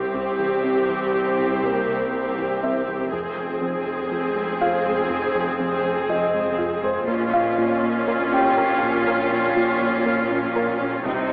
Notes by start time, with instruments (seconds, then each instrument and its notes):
Already playing: double bass section C2, cello section C2, sub bass C2, viola section C4 G4, felt piano E4 E5
0.14 analog synth bass C2, synth arpeggio sound C3, felt piano G4
0.39 analog synth bass C2, synth arpeggio sound E3
0.64 analog synth bass C2, synth arpeggio sound C4
0.88 analog synth bass C2, synth arpeggio sound E3
1.13 analog synth bass C2, synth arpeggio sound C3
1.39 analog synth bass C3
1.63 analog synth bass C3, synth arpeggio sound G3, felt piano A#3 A#4
1.88 analog synth bass C3
2.13 analog synth bass C2, synth arpeggio sound C3
2.38 analog synth bass C2, synth arpeggio sound E3
2.63 analog synth bass C2, synth arpeggio sound C4, felt piano E5
2.88 analog synth bass C2, synth arpeggio sound E3
3.12 sub bass F1, double bass section F1, cello section F2, analog synth bass F2, synth arpeggio sound F3, viola section C4 G#4, taiko
3.37 analog synth bass F3
3.61 analog synth bass F3, synth arpeggio sound C4
3.87 analog synth bass F3
4.11 analog synth bass F2, synth arpeggio sound F3
4.36 analog synth bass F2, synth arpeggio sound G#3
4.61 analog synth bass F2, synth arpeggio sound F4, felt piano F5
4.86 analog synth bass F2, synth arpeggio sound G#3
5.10 analog synth bass F2, synth arpeggio sound F3
5.35 analog synth bass F3
5.60 analog synth bass F3, synth arpeggio sound C4
5.84 analog synth bass F3
6.09 analog synth bass F2, synth arpeggio sound F3, felt piano D#5
6.34 analog synth bass F2, synth arpeggio sound G#3
6.59 analog synth bass F2, synth arpeggio sound F4
6.83 analog synth bass F2, synth arpeggio sound G#3, felt piano C5
7.08 sub bass A#1, double bass section A#1, cello section A#2, analog synth bass A#2, synth arpeggio sound A#3, viola section C#4 F4, taiko
7.33 analog synth bass A#3, felt piano F4 F5
7.58 analog synth bass A#3, synth arpeggio sound F4
7.83 analog synth bass A#3
8.08 analog synth bass A#2, synth arpeggio sound A#3
8.32 analog synth bass A#2, synth arpeggio sound C#4, felt piano G4 G5
8.57 analog synth bass A#2, synth arpeggio sound A#4
8.82 analog synth bass A#2, synth arpeggio sound C#4
9.07 analog synth bass A#2, synth arpeggio sound A#3
9.32 analog synth bass A#3
9.57 analog synth bass A#3, synth arpeggio sound F4
9.82 analog synth bass A#3
10.06 analog synth bass A#2, synth arpeggio sound A#3
10.31 analog synth bass A#2, synth arpeggio sound C#4
10.56 analog synth bass A#2, synth arpeggio sound A#4
10.81 analog synth bass A#2, synth arpeggio sound C#4
11.05 analog synth bass C2, sub bass C2, double bass section C2, synth arpeggio sound C3, cello section C3, viola section C4 D#4, taiko